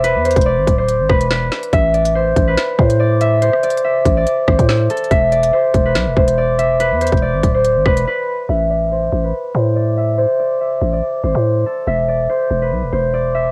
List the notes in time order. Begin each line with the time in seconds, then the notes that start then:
Already playing: E1 A4 D5 E5
0.04 B4, closed hi-hat
0.15 E2
0.25 C5, closed hi-hat
0.31 closed hi-hat
0.36 E1, kick, closed hi-hat
0.41 closed hi-hat
0.46 D5
0.57 G#1
0.67 D1, kick, closed hi-hat
0.78 C5
0.88 closed hi-hat
0.99 G#1
1.09 E1 B4, kick, cross-stick
1.21 closed hi-hat
1.31 B4, snare
1.52 snare, closed hi-hat
1.63 closed hi-hat
1.73 A1 E5, kick, closed hi-hat
1.94 D5, closed hi-hat
2.05 closed hi-hat
2.15 C5
2.36 A1, kick, closed hi-hat
2.47 B4
2.57 snare, closed hi-hat
2.78 A2 C5, kick
2.90 closed hi-hat
3.00 D5
3.21 E5, closed hi-hat
3.42 C5, closed hi-hat
3.53 cross-stick
3.63 D5, closed hi-hat
3.70 closed hi-hat
3.77 closed hi-hat
3.84 E5
4.05 A1, kick, closed hi-hat
4.17 D5
4.27 closed hi-hat
4.48 G#1 C5, kick, cross-stick
4.59 A2, kick, closed hi-hat
4.69 snare
4.90 A4, closed hi-hat
4.97 closed hi-hat
5.04 closed hi-hat
5.11 E1 E5, kick, closed hi-hat
5.32 D5, closed hi-hat
5.43 closed hi-hat
5.53 C5
5.74 E1, kick, closed hi-hat
5.86 B4
5.95 B1, snare, closed hi-hat
6.07 E1
6.17 E1 C5, kick
6.28 closed hi-hat
6.38 D5
6.59 E5, closed hi-hat
6.80 B4, closed hi-hat
6.91 E2
7.01 C5, closed hi-hat
7.07 closed hi-hat
7.12 E1, kick, closed hi-hat
7.17 closed hi-hat
7.22 D5
7.33 G#1
7.43 D1, kick, closed hi-hat
7.54 C5
7.65 closed hi-hat
7.76 G#1
7.86 E1 B4, kick, cross-stick
7.97 closed hi-hat
8.07 B4
8.49 A1 E5
8.70 D5
8.91 C5
9.12 A1
9.24 B4
9.55 A2 C5
9.76 D5
9.97 E5
10.18 C5
10.39 D5
10.61 E5
10.81 A1
10.93 D5
11.24 G#1 C5
11.35 A2
11.66 A4
11.87 E1 E5
12.08 D5
12.29 C5
12.51 E1
12.62 B4
12.71 B1
12.83 E1
12.93 E1 C5
13.14 D5
13.35 E5